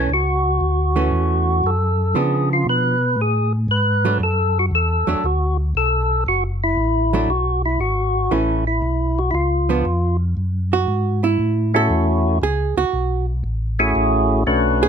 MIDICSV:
0, 0, Header, 1, 4, 480
1, 0, Start_track
1, 0, Key_signature, 3, "minor"
1, 0, Tempo, 512821
1, 97, Time_signature, 4, 2, 24, 8
1, 13933, End_track
2, 0, Start_track
2, 0, Title_t, "Tonewheel organ"
2, 0, Program_c, 0, 16
2, 0, Note_on_c, 0, 61, 78
2, 117, Note_off_c, 0, 61, 0
2, 126, Note_on_c, 0, 66, 85
2, 1558, Note_on_c, 0, 69, 73
2, 1596, Note_off_c, 0, 66, 0
2, 2037, Note_on_c, 0, 68, 81
2, 2042, Note_off_c, 0, 69, 0
2, 2334, Note_off_c, 0, 68, 0
2, 2369, Note_on_c, 0, 65, 68
2, 2500, Note_off_c, 0, 65, 0
2, 2522, Note_on_c, 0, 71, 81
2, 3005, Note_off_c, 0, 71, 0
2, 3008, Note_on_c, 0, 68, 73
2, 3301, Note_off_c, 0, 68, 0
2, 3474, Note_on_c, 0, 71, 85
2, 3914, Note_off_c, 0, 71, 0
2, 3963, Note_on_c, 0, 69, 84
2, 4290, Note_off_c, 0, 69, 0
2, 4299, Note_on_c, 0, 66, 70
2, 4360, Note_off_c, 0, 66, 0
2, 4446, Note_on_c, 0, 69, 78
2, 4918, Note_on_c, 0, 66, 67
2, 4928, Note_off_c, 0, 69, 0
2, 5216, Note_off_c, 0, 66, 0
2, 5401, Note_on_c, 0, 69, 91
2, 5839, Note_off_c, 0, 69, 0
2, 5882, Note_on_c, 0, 66, 89
2, 6025, Note_off_c, 0, 66, 0
2, 6211, Note_on_c, 0, 64, 83
2, 6833, Note_on_c, 0, 66, 89
2, 6852, Note_off_c, 0, 64, 0
2, 7134, Note_off_c, 0, 66, 0
2, 7165, Note_on_c, 0, 64, 75
2, 7300, Note_off_c, 0, 64, 0
2, 7306, Note_on_c, 0, 66, 76
2, 7789, Note_on_c, 0, 64, 74
2, 7800, Note_off_c, 0, 66, 0
2, 8093, Note_off_c, 0, 64, 0
2, 8117, Note_on_c, 0, 64, 70
2, 8597, Note_on_c, 0, 66, 72
2, 8610, Note_off_c, 0, 64, 0
2, 8708, Note_off_c, 0, 66, 0
2, 8713, Note_on_c, 0, 64, 50
2, 8747, Note_on_c, 0, 65, 65
2, 8749, Note_off_c, 0, 64, 0
2, 9517, Note_off_c, 0, 65, 0
2, 10990, Note_on_c, 0, 57, 59
2, 10993, Note_on_c, 0, 61, 54
2, 10993, Note_on_c, 0, 64, 57
2, 10996, Note_on_c, 0, 66, 51
2, 11592, Note_off_c, 0, 57, 0
2, 11594, Note_off_c, 0, 61, 0
2, 11594, Note_off_c, 0, 64, 0
2, 11595, Note_off_c, 0, 66, 0
2, 12910, Note_on_c, 0, 57, 64
2, 12910, Note_on_c, 0, 61, 61
2, 12913, Note_on_c, 0, 64, 57
2, 12914, Note_on_c, 0, 66, 56
2, 12915, Note_on_c, 0, 68, 69
2, 13510, Note_off_c, 0, 57, 0
2, 13510, Note_off_c, 0, 61, 0
2, 13511, Note_off_c, 0, 64, 0
2, 13512, Note_off_c, 0, 66, 0
2, 13513, Note_off_c, 0, 68, 0
2, 13540, Note_on_c, 0, 57, 67
2, 13541, Note_on_c, 0, 61, 58
2, 13542, Note_on_c, 0, 62, 63
2, 13544, Note_on_c, 0, 66, 63
2, 13546, Note_on_c, 0, 71, 72
2, 13933, Note_off_c, 0, 57, 0
2, 13933, Note_off_c, 0, 61, 0
2, 13933, Note_off_c, 0, 62, 0
2, 13933, Note_off_c, 0, 66, 0
2, 13933, Note_off_c, 0, 71, 0
2, 13933, End_track
3, 0, Start_track
3, 0, Title_t, "Hollow-body jazz guitar"
3, 0, Program_c, 1, 26
3, 896, Note_on_c, 1, 52, 55
3, 901, Note_on_c, 1, 57, 58
3, 906, Note_on_c, 1, 61, 60
3, 1503, Note_off_c, 1, 52, 0
3, 1505, Note_off_c, 1, 57, 0
3, 1507, Note_off_c, 1, 61, 0
3, 2013, Note_on_c, 1, 53, 50
3, 2019, Note_on_c, 1, 59, 54
3, 2024, Note_on_c, 1, 62, 63
3, 2760, Note_off_c, 1, 53, 0
3, 2762, Note_off_c, 1, 59, 0
3, 2765, Note_off_c, 1, 62, 0
3, 3789, Note_on_c, 1, 54, 59
3, 3795, Note_on_c, 1, 57, 67
3, 3800, Note_on_c, 1, 62, 68
3, 3925, Note_off_c, 1, 54, 0
3, 3928, Note_off_c, 1, 57, 0
3, 3931, Note_off_c, 1, 62, 0
3, 4748, Note_on_c, 1, 54, 64
3, 4758, Note_on_c, 1, 57, 60
3, 4760, Note_on_c, 1, 62, 67
3, 4885, Note_off_c, 1, 54, 0
3, 4890, Note_off_c, 1, 57, 0
3, 4891, Note_off_c, 1, 62, 0
3, 6677, Note_on_c, 1, 54, 66
3, 6684, Note_on_c, 1, 57, 70
3, 6690, Note_on_c, 1, 62, 70
3, 6811, Note_off_c, 1, 54, 0
3, 6814, Note_off_c, 1, 57, 0
3, 6817, Note_off_c, 1, 62, 0
3, 7780, Note_on_c, 1, 52, 58
3, 7784, Note_on_c, 1, 57, 60
3, 7787, Note_on_c, 1, 61, 59
3, 8078, Note_off_c, 1, 52, 0
3, 8080, Note_off_c, 1, 57, 0
3, 8081, Note_off_c, 1, 61, 0
3, 9072, Note_on_c, 1, 53, 61
3, 9079, Note_on_c, 1, 59, 64
3, 9083, Note_on_c, 1, 62, 62
3, 9209, Note_off_c, 1, 53, 0
3, 9212, Note_off_c, 1, 59, 0
3, 9214, Note_off_c, 1, 62, 0
3, 10044, Note_on_c, 1, 66, 71
3, 10486, Note_off_c, 1, 66, 0
3, 10519, Note_on_c, 1, 64, 71
3, 10963, Note_off_c, 1, 64, 0
3, 11007, Note_on_c, 1, 69, 83
3, 11593, Note_off_c, 1, 69, 0
3, 11637, Note_on_c, 1, 68, 79
3, 11949, Note_off_c, 1, 68, 0
3, 11957, Note_on_c, 1, 66, 78
3, 12401, Note_off_c, 1, 66, 0
3, 13878, Note_on_c, 1, 68, 91
3, 13933, Note_off_c, 1, 68, 0
3, 13933, End_track
4, 0, Start_track
4, 0, Title_t, "Tonewheel organ"
4, 0, Program_c, 2, 16
4, 88, Note_on_c, 2, 37, 69
4, 558, Note_off_c, 2, 37, 0
4, 567, Note_on_c, 2, 38, 83
4, 1038, Note_off_c, 2, 38, 0
4, 1044, Note_on_c, 2, 40, 79
4, 1516, Note_off_c, 2, 40, 0
4, 1533, Note_on_c, 2, 42, 84
4, 2001, Note_off_c, 2, 42, 0
4, 2004, Note_on_c, 2, 49, 76
4, 2477, Note_off_c, 2, 49, 0
4, 2489, Note_on_c, 2, 47, 82
4, 2960, Note_off_c, 2, 47, 0
4, 2963, Note_on_c, 2, 45, 74
4, 3437, Note_off_c, 2, 45, 0
4, 3448, Note_on_c, 2, 44, 85
4, 3920, Note_off_c, 2, 44, 0
4, 3932, Note_on_c, 2, 42, 73
4, 4402, Note_off_c, 2, 42, 0
4, 4410, Note_on_c, 2, 40, 83
4, 4721, Note_off_c, 2, 40, 0
4, 4749, Note_on_c, 2, 40, 38
4, 4825, Note_off_c, 2, 40, 0
4, 4902, Note_on_c, 2, 38, 81
4, 5368, Note_off_c, 2, 38, 0
4, 5382, Note_on_c, 2, 35, 89
4, 5848, Note_off_c, 2, 35, 0
4, 5864, Note_on_c, 2, 30, 76
4, 6329, Note_off_c, 2, 30, 0
4, 6337, Note_on_c, 2, 33, 88
4, 6806, Note_off_c, 2, 33, 0
4, 6816, Note_on_c, 2, 35, 75
4, 7286, Note_off_c, 2, 35, 0
4, 7295, Note_on_c, 2, 32, 83
4, 7765, Note_off_c, 2, 32, 0
4, 7779, Note_on_c, 2, 33, 69
4, 8247, Note_off_c, 2, 33, 0
4, 8257, Note_on_c, 2, 35, 81
4, 8726, Note_off_c, 2, 35, 0
4, 8737, Note_on_c, 2, 37, 75
4, 9207, Note_off_c, 2, 37, 0
4, 9222, Note_on_c, 2, 41, 88
4, 9689, Note_off_c, 2, 41, 0
4, 9704, Note_on_c, 2, 42, 73
4, 10170, Note_off_c, 2, 42, 0
4, 10182, Note_on_c, 2, 44, 79
4, 10649, Note_off_c, 2, 44, 0
4, 10662, Note_on_c, 2, 45, 77
4, 11129, Note_off_c, 2, 45, 0
4, 11138, Note_on_c, 2, 40, 89
4, 11606, Note_off_c, 2, 40, 0
4, 11622, Note_on_c, 2, 37, 77
4, 11928, Note_off_c, 2, 37, 0
4, 11949, Note_on_c, 2, 37, 40
4, 12026, Note_off_c, 2, 37, 0
4, 12104, Note_on_c, 2, 35, 85
4, 12569, Note_off_c, 2, 35, 0
4, 12577, Note_on_c, 2, 33, 78
4, 13044, Note_off_c, 2, 33, 0
4, 13060, Note_on_c, 2, 33, 95
4, 13526, Note_off_c, 2, 33, 0
4, 13543, Note_on_c, 2, 35, 83
4, 13933, Note_off_c, 2, 35, 0
4, 13933, End_track
0, 0, End_of_file